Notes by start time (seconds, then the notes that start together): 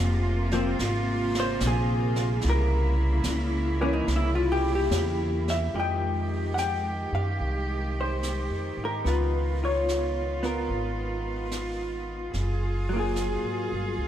Already playing: F1 C3 A#3 F4
0.51 F3 A#3 C4, snare
0.79 G#1, brush sweep, snare
1.35 snare
1.40 C5
1.60 A#1, snare, hi-hat pedal
1.67 G#4
2.16 snare
2.41 C2 C#3 E4, brush sweep, snare
2.50 A#4
3.24 C#2, snare, hi-hat pedal
3.81 E3 A#3 C#4
3.93 D#4
4.07 C2, brush sweep, snare
4.16 E4
4.35 F4
4.52 G4
4.75 G4
4.90 E2, snare, hi-hat pedal
5.48 E5, snare
5.74 F2 D#3 F3 G#3 D#4 G4, brush sweep
5.79 D#5 G5
6.54 F#5, snare, hi-hat pedal
6.59 G5
7.12 F#2 F5
7.40 C2, brush sweep
8.01 C5
8.23 snare, hi-hat pedal
8.50 F2
8.77 G#2
8.85 A#4
9.03 C#2 B3 F4, brush sweep, snare
9.07 F4 B4
9.64 F4 C#5
9.89 snare, hi-hat pedal
10.43 B3 F4 A#4, snare
10.69 G#1, brush sweep
11.51 snare, hi-hat pedal
12.33 F#1 F4 G#4, brush sweep, snare
12.89 F#3
12.93 A#3 F4
13.00 G#4
13.16 snare, hi-hat pedal
13.43 G#1
13.72 G1
13.98 C#2, brush sweep